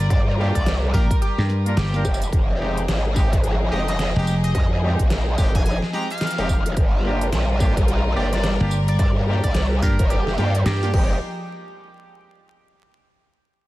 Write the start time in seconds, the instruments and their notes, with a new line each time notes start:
Already playing: string section G3 F4 A#4
0.10 wobble bass G2, analog synth lead D5, kick, closed hi-hat
0.38 horn section A#3 D4 F4 G4
0.55 wobble bass C2, analog synth lead D5, kick, closed hi-hat
0.66 snare, closed hi-hat
0.94 slap bass A#1, horn section A#3 D4 F4 G4, analog synth lead A#4, kick, tambourine
1.11 kick, closed hi-hat
1.22 analog synth lead G4, closed hi-hat
1.38 slap bass G2, snare
1.50 snare
1.66 horn section A#3 D4 F4 A#4, closed hi-hat
1.77 slap bass G1, analog synth lead G4, snare, closed hi-hat
1.94 horn section A#3 D4 F4 A#4, snare
2.05 wobble bass F1, kick, tambourine
2.14 tambourine
2.22 closed hi-hat, tambourine
2.33 wobble bass F1, string section F3 D#4 G#4, kick, closed hi-hat
2.60 horn section G#3 C4 D#4 G4
2.77 closed hi-hat
2.88 wobble bass G#1, snare, closed hi-hat
3.16 horn section G#3 C4 D#4 G4, kick, tambourine
3.33 kick, closed hi-hat
3.44 closed hi-hat
3.71 wobble bass F1, horn section G#3 C4 D#4 G4, analog synth lead D#5
3.88 analog synth lead D#5, snare, closed hi-hat
3.99 snare, closed hi-hat
4.16 slap bass F1, horn section G#3 C4 D#4 G4
4.27 tambourine
4.44 analog synth lead D#5, closed hi-hat
4.55 wobble bass F2, analog synth lead D#5, kick, closed hi-hat
4.82 horn section G#3 C4 D#4 G4
4.99 wobble bass A#1, kick, closed hi-hat
5.10 snare, closed hi-hat
5.38 wobble bass F1, horn section G#3 C4 D#4 G4, kick, tambourine
5.55 analog synth lead G#5, kick, closed hi-hat
5.66 analog synth lead G#5, closed hi-hat
5.82 snare
5.93 horn section G#3 C4 D#4 G4, analog synth lead A#5, snare
6.10 analog synth lead F5, closed hi-hat
6.18 snare, closed hi-hat
6.21 closed hi-hat
6.27 closed hi-hat
6.30 closed hi-hat
6.38 wobble bass F1, horn section G#3 C4 D#4 G4, snare
6.49 kick, tambourine
6.66 wobble bass F1, closed hi-hat
6.77 wobble bass G1, string section G3 F4 A#4, kick, closed hi-hat
7.05 horn section A#3 D4 F4 G4
7.21 closed hi-hat
7.33 wobble bass A#1, snare, closed hi-hat
7.60 horn section A#3 D4 F4 G4, kick, tambourine
7.77 kick, closed hi-hat
7.88 closed hi-hat
8.16 wobble bass G1, horn section A#3 D4 F4 G4, analog synth lead D5
8.33 analog synth lead D5, snare, closed hi-hat
8.44 snare, closed hi-hat
8.60 slap bass G1, horn section A#3 D4 F4 G4
8.71 tambourine
8.88 analog synth lead D5, closed hi-hat
8.99 wobble bass G2, string section G4, analog synth lead D5, kick, closed hi-hat
9.27 horn section A#3 D4 F4 G4
9.44 wobble bass C2, analog synth lead D5, kick, closed hi-hat
9.55 snare, closed hi-hat
9.82 slap bass G2, horn section A#3 D4 F4 G4, analog synth lead A#4, kick, tambourine
9.99 wobble bass F1, kick, closed hi-hat
10.10 analog synth lead G4, closed hi-hat
10.27 snare
10.38 wobble bass G2, horn section A#3 D4 F4 G4, snare
10.55 closed hi-hat
10.65 slap bass G2, analog synth lead G4, snare, closed hi-hat
10.83 horn section A#3 D4 F4 G4, snare
10.94 wobble bass F1, string section F3 D#4 G#4, horn section G#3 C4 D#4 G4, kick, crash